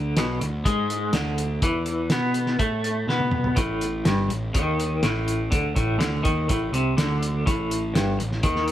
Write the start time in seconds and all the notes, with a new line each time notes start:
Already playing: D2 D3
0.17 B1 B2, snare, closed hi-hat
0.41 D2 D3, closed hi-hat
0.65 G#2 G#3, kick, closed hi-hat
0.90 closed hi-hat
1.13 D2 D3, snare, closed hi-hat
1.38 closed hi-hat
1.62 E2 E3, kick, closed hi-hat
1.86 closed hi-hat
2.10 B2 B3, snare, closed hi-hat
2.34 closed hi-hat
2.46 snare
2.59 A2 A3, kick, closed hi-hat
2.84 closed hi-hat
3.08 B2 B3, snare
3.20 high tom
3.32 mid tom
3.44 floor tom
3.56 A1 A2, kick, closed hi-hat
3.81 closed hi-hat
4.05 G1 G2, snare, closed hi-hat
4.29 A1 A2, closed hi-hat
4.54 D#2 D#3, kick, closed hi-hat
4.80 closed hi-hat
5.03 A1 A2, snare, closed hi-hat
5.28 closed hi-hat
5.51 D2 D3, kick, closed hi-hat
5.76 A1 A2, kick, closed hi-hat
5.98 D2 D3, snare, closed hi-hat
6.23 D#2 D#3, kick, closed hi-hat
6.49 A1 A2, kick, closed hi-hat
6.73 C2 C3, closed hi-hat
6.97 D2 D3, snare, closed hi-hat
7.23 closed hi-hat
7.46 A1 A2, kick, closed hi-hat
7.71 closed hi-hat
7.94 G1 G2, snare, closed hi-hat
8.19 A1 A2, closed hi-hat
8.32 snare
8.43 D#2 D#3, kick, closed hi-hat
8.56 snare
8.68 closed hi-hat